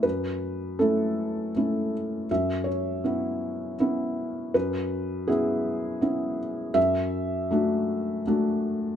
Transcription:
\new Staff \with { instrumentName = "Felt piano" } { \time 3/4 \key cis \phrygian \tempo 4 = 80 << { b'4 a'4. r8 | e''8 cis''2~ cis''8 | b'4 gis'4. r8 | e''2. | } \\ { fis,4 <a cis' e'>4 <a cis' e'>4 | fis,4 <b cis' e'>4 <b cis' e'>4 | fis,4 <b cis' e'>4 <b cis' e'>4 | fis,4 <a d' fis'>4 <a d' fis'>4 | } >> }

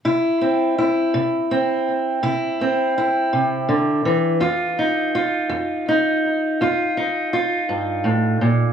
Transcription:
\new Staff \with { instrumentName = "Steel-string acoustic guitar" } { \time 12/8 \key f \major \tempo 4. = 55 << { e'8 c'8 e'4 c'4 e'8 c'8 e'2 | f'8 ees'8 f'4 ees'4 f'8 ees'8 f'2 | } \\ { c4 r8 c4 r8 c4 r8 c8 d8 e8 | f,4 r8 f,4 r8 f,4 r8 g,8 a,8 bes,8 | } >> }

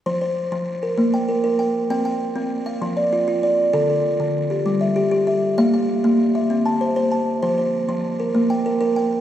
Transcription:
<<
  \new Staff \with { instrumentName = "Kalimba" } { \time 12/8 \key f \major \tempo 4. = 130 c''8 c''4. r8 bes'4 g''8 bes'4 g''4 | g''8 g''4. r8 f''4 d''8 f'4 d''4 | a'8 a'4. r8 g'4 e''8 g'4 e''4 | f''8 f''4. r8 e''4 a''8 c''4 a''4 |
c''8 c''4. r8 bes'4 g''8 bes'4 g''4 | }
  \new Staff \with { instrumentName = "Kalimba" } { \time 12/8 \key f \major f4 r8 f4 r8 bes4 r8 bes'4 r8 | c'4 r8 c'4 r8 f4 r8 f'4 r8 | d4 r8 d4 r8 g4 r8 g'4 r8 | bes4 r8 bes4 r8 c'4 r8 c''4 r8 |
f4 r8 f4 r8 bes4 r8 bes'4 r8 | }
>>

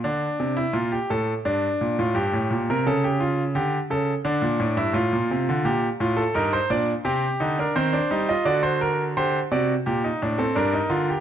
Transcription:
<<
  \new Staff \with { instrumentName = "Grand piano" } { \time 4/4 \key g \minor \tempo 4 = 86 << { r1 | r1 | g'8. a'16 bes'16 c''16 d''8 g'8. bes'16 c''8. ees''16 | d''16 c''16 bes'8 c''8 d''8 g'8. a'16 bes'4 | } \\ { d'8. e'16 f'16 g'16 a'8 d'8. f'16 g'8. bes'16 | a'16 g'16 f'8 g'8 a'8 d'8. e'16 f'4 | r8 f'8 ees'8 d'8 c'8 ees'16 d'16 c'16 d'16 ees'16 f'16 | fis'4 g'8 fis'8 r16 ees'16 d'16 c'16 d'16 ees'16 f'16 g'16 | } >> }
  \new Staff \with { instrumentName = "Grand piano" } { \clef bass \time 4/4 \key g \minor d8 c8 bes,8 a,8 g,8 bes,16 a,16 g,16 a,16 bes,16 c16 | cis4 d8 cis8 d16 bes,16 a,16 g,16 a,16 bes,16 c16 d16 | bes,8 a,8 g,8 bes,8 c8 d8 ees8 g8 | d4 d8 c8 bes,8 a,8 g,8 d8 | }
>>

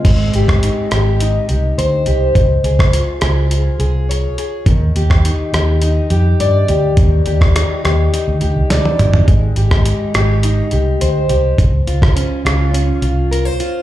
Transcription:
<<
  \new Staff \with { instrumentName = "Steel-string acoustic guitar" } { \time 4/4 \key aes \lydian \tempo 4 = 104 aes8 g'8 ees'8 g'8 ees'8 g'8 c''8 g'8 | r8 aes'8 f'8 aes'8 f'8 aes'8 des''8 aes'8 | ees8 g'8 ees'8 g'8 ees'8 g'8 d''8 g'8 | ees8 g'8 ees'8 g'8 ees'8 g'8 d''8 g'8 |
aes8 g'8 ees'8 g'8 ees'8 g'8 c''8 g'8 | r8 f'8 des'8 f'8 des'8 f'8 bes'16 c''16 f'8 | }
  \new Staff \with { instrumentName = "Fingered electric bass" } { \clef bass \time 4/4 \key aes \lydian aes,,8 aes,,8. r16 aes,,4 c,8 d,8 c,8 | des,8 des,8. r16 des,4 c,4 r8 | ees,8 ees,8. r16 ees,4 f,8 g,8 d,8 | ees,8 ees,8. r16 ees,8 r16 d,16 d,16 c,16 d,16 r16 g,,8 |
aes,,8 aes,,8. r16 aes,,4 c,8 d,8 c,8 | des,8 des,8. r16 des,4 c,4 r8 | }
  \new DrumStaff \with { instrumentName = "Drums" } \drummode { \time 4/4 <cymc hh bd>8 hh16 <bd ss>16 hh8 <hh ss>8 hh8 hh8 hh8 hh8 | <hh bd>8 hh16 <bd ss>16 hh8 <hh ss>8 hh8 hh8 hh8 hh8 | <hh bd>8 hh16 <bd ss>16 hh8 <hh ss>8 hh8 hh8 hh8 hh8 | <hh bd>8 hh16 <bd ss>16 <hh ss>8 <hh ss>8 hh8 hh8 <hh sn>16 tommh16 <hh toml>16 tomfh16 |
<hh bd>8 hh16 <bd ss>16 hh8 <hh ss>8 hh8 hh8 hh8 hh8 | <hh bd>8 hh16 <bd ss>16 hh8 <hh ss>8 hh8 hh8 hh8 hh8 | }
>>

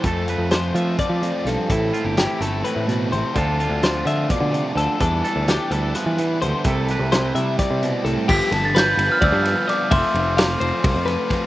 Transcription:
<<
  \new Staff \with { instrumentName = "Glockenspiel" } { \time 7/8 \key f \lydian \tempo 4 = 128 r2. r8 | r2. r8 | r2. r8 | r2. r8 |
r2. r8 | b'''8. a'''16 g'''8. f'''16 e'''4 d'''8 | c'''2. r8 | }
  \new Staff \with { instrumentName = "Clean electric guitar" } { \time 7/8 \key f \lydian a'4 c''8 e''8 d''4 a'8 | a'4 g'8 a'8 b'4 c''8 | a'4 c''8 e''8 d''4 a'8 | a'4 g'8 a'8 b'4 c''8 |
a'4 c''8 e''8 d''4 a'8 | g'8 a'8 b'4 d''8 b'8 d''8 | e''4 f''8 c''4 b'4 | }
  \new Staff \with { instrumentName = "Overdriven electric guitar" } { \time 7/8 \key f \lydian <f a c' f'>8 <a c' f'>8 <f a c' f'>8 <f a c' f'>8 <f a c' f'>8 <f a c' f'>8 <f a c' f'>8 | <a, e a c' e'>8 <a c' e'>8 <e a c' e'>8 <a, e a c' e'>8 <e a c' e'>8 <a, e a c' e'>8 <e a c' e'>8 | <d a d' f'>8 <a d' f'>8 <d a d' f'>8 <d a d' f'>8 <d a d' f'>8 <d a d' f'>8 <d a d' f'>8 | <e g b e'>8 <g b e'>8 <e g b e'>8 <e g b e'>8 <e g b e'>8 <e g b e'>8 <e g b e'>8 |
<c g c' e'>8 <g c' e'>8 <c g c' e'>8 <c g c' e'>8 <c g c' e'>8 <c g c' e'>8 <c g c' e'>8 | <g, d f b f'>8 <f b f'>8 <d f b f'>8 <f b f'>8 <g, d f b f'>4 <d f b f'>8 | <f a c' f'>8 <a c' f'>8 <f a c' f'>8 <a c' f'>8 <f a c' f'>4 <f a c' f'>8 | }
  \new Staff \with { instrumentName = "Clean electric guitar" } { \clef bass \time 7/8 \key f \lydian << { <f a a'>8 b'2. | e'8 f'16 g'16 e'2~ e'8 | <f c' d' f'>8 f'8 d'2~ d'8 | d'8 a'8 d'2~ d'8 |
<g a e' a'>8 b'8 e'2~ e'8 | r2. r8 | r2. r8 | } \\ { f,4. f4 f,8 g,8 | a,4. a8 a,8 b,8 c8 | d4. f8 b,8 c8 d8 | e4. g8 f8 e8 d8 |
c4. g8 c8 b,8 a,8 | r2. r8 | r2. r8 | } >> }
  \new Staff \with { instrumentName = "Picked electric bass" } { \clef bass \time 7/8 \key f \lydian f,8. f,8. f8 r16 f8 r16 b,,16 r16 | a,,8 r16 g,,8 r16 g,,8 r16 a,8. a,,16 r16 | d,8. d,8. d8 r16 d8 r16 d,16 r16 | e,8 r16 d,8 r16 d,8 r16 e8. d,16 r16 |
c,8. c,8. c8 r16 c8 r16 c,16 r16 | g,,16 r16 g,,4 g,,16 r16 d,16 g,8 r8. | f,,16 r16 f,,4 f,,16 r16 c,16 f,8 r8. | }
  \new DrumStaff \with { instrumentName = "Drums" } \drummode { \time 7/8 <hh bd>8 hh8 <hh sn>8 hh8 <hh bd>8 hh8 <hh sn>8 | <hh bd>8 hh8 <hh sn>8 <hh sn>8 hh8 <hh sn>8 hh8 | <hh bd>8 hh8 <hh sn>8 <hh sn>8 <hh bd>8 hh8 <hh sn>8 | <hh bd>8 <hh sn>8 <hh sn>8 hh8 <hh sn>8 hh8 hh8 |
<hh bd>8 <hh sn>8 <hh sn>8 hh8 <hh bd sn>8 hh8 hh8 | <cymc bd>8 <cymr sn>8 <cymr sn>8 cymr8 <bd cymr>8 <cymr sn>8 <cymr sn>8 | <bd cymr>8 cymr8 <cymr sn>8 cymr8 <bd cymr>8 <cymr sn>8 <bd cymr sn>8 | }
>>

